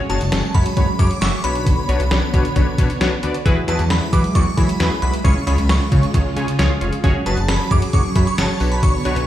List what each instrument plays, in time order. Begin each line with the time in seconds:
Already playing: string machine F#3 G#3 C#5
0.10 analog synth bass F#1, synth keys C#4 F#4 G#4 C#5, synth bell A5, closed hi-hat
0.21 analog synth bass F#1, closed hi-hat
0.32 analog synth bass F#1, synth keys C#4 F#4 G#4 C#5, snare, closed hi-hat
0.54 analog synth bass F#2, synth keys C#4 F#4 G#4 C#5, synth bell B5, kick, closed hi-hat
0.66 closed hi-hat
0.77 analog synth bass F#1, synth keys C#4 F#4 G#4 C#5, kick, closed hi-hat
0.99 analog synth bass F#2, synth keys C#4 F#4 G#4 C#5, synth bell D6, kick, closed hi-hat
1.11 closed hi-hat
1.21 analog synth bass F#1, synth keys C#4 F#4 G#4 E5, synth bell C#6, snare, closed hi-hat
1.44 analog synth bass B1, string machine D3 B3, synth keys D4 F#4 B4 C#5, synth bell B5, closed hi-hat
1.55 closed hi-hat
1.67 kick, closed hi-hat
1.89 analog synth bass B1, synth keys D4 F#4 B4 C#5, closed hi-hat
2.00 analog synth bass B1, closed hi-hat
2.11 analog synth bass B1, synth keys D4 F#4 B4 C#5, snare, closed hi-hat
2.33 analog synth bass B2, synth keys D4 F#4 B4 C#5, kick, closed hi-hat
2.45 closed hi-hat
2.56 analog synth bass B1, synth keys D4 F#4 B4 C#5, kick, closed hi-hat
2.78 analog synth bass B2, synth keys D4 F#4 B4 C#5, kick, closed hi-hat
2.90 closed hi-hat
3.01 analog synth bass B1, synth keys D4 F#4 B4 C#5, snare, closed hi-hat
3.23 analog synth bass D2, synth keys D4 F#4 B4 D5, closed hi-hat
3.34 closed hi-hat
3.45 analog synth bass E2, string machine F#3 G#3 E4, synth keys E4 F#4 G#4 B4, kick, closed hi-hat
3.68 analog synth bass E2, synth keys E4 F#4 G#4 B4, synth bell A5, closed hi-hat
3.79 analog synth bass E2, closed hi-hat
3.90 analog synth bass E2, synth keys E4 F#4 G#4 B4, synth bell B5, snare, closed hi-hat
4.13 analog synth bass E3, synth keys E4 F#4 G#4 B4, synth bell D6, kick, closed hi-hat
4.24 closed hi-hat
4.35 analog synth bass E2, synth keys E4 F#4 G#4 D5, synth bell C#6, kick, closed hi-hat
4.57 analog synth bass E3, synth keys E4 F#4 G#4 C#5, synth bell B5, kick, closed hi-hat
4.69 closed hi-hat
4.80 analog synth bass E2, synth keys E4 F#4 G#4 B4, snare, closed hi-hat
5.02 analog synth bass B1, synth keys E4 F#4 G#4 B4, synth bell B5, closed hi-hat
5.13 closed hi-hat
5.24 analog synth bass C#2, string machine C#3 F4, synth keys C#4 F4 G#4 C#5, synth bell C#6, kick, closed hi-hat
5.47 analog synth bass C#2, synth keys C#4 F4 G#4 C#5, synth bell B5, closed hi-hat
5.58 analog synth bass C#2, closed hi-hat
5.69 analog synth bass C#2, synth keys C#4 F4 G#4 C#5, synth bell C#6, snare, closed hi-hat
5.92 analog synth bass C#3, synth keys C#4 F4 G#4 C#5, kick, closed hi-hat
6.03 closed hi-hat
6.14 analog synth bass C#2, synth keys C#4 F4 G#4 C#5, kick, closed hi-hat
6.36 analog synth bass C#3, synth keys C#4 F4 G#4 C#5 G#5, closed hi-hat
6.48 closed hi-hat
6.59 analog synth bass C#2, synth keys C#4 F4 G#4 C#5 F5, snare, closed hi-hat
6.81 analog synth bass F1, synth keys C#4 F4 G#4 C#5, closed hi-hat
6.93 closed hi-hat
7.04 analog synth bass F#1, string machine F#3 G#4 C#5, synth keys C#4 F#4 G#4 C#5, kick, closed hi-hat
7.26 analog synth bass F#1, synth keys C#4 F#4 G#4 B4, synth bell A5, closed hi-hat
7.37 analog synth bass F#1, closed hi-hat
7.48 analog synth bass F#1, synth keys C#4 F#4 G#4 C#5, synth bell B5, snare, closed hi-hat
7.71 analog synth bass F#2, synth keys C#4 F#4 G#4 C#5, synth bell D6, kick, closed hi-hat
7.82 closed hi-hat
7.93 analog synth bass F#1, synth keys C#4 F#4 G#4 C#5, synth bell C#6, kick, closed hi-hat
8.16 analog synth bass F#2, synth keys C#4 F#4 G#4 C#5, synth bell B5, kick, closed hi-hat
8.27 synth bell C#6, closed hi-hat
8.38 analog synth bass F#1, synth keys C#4 F#4 G#4 C#5, synth bell A5, snare, closed hi-hat
8.60 analog synth bass B1, string machine D3 B3, synth keys D4 F#4 B4 C#5, open hi-hat
8.72 synth bell B5, closed hi-hat
8.83 synth bell C#6, kick, closed hi-hat
9.05 analog synth bass B1, synth keys D4 F#4 B4 C#5, closed hi-hat
9.16 analog synth bass B1, closed hi-hat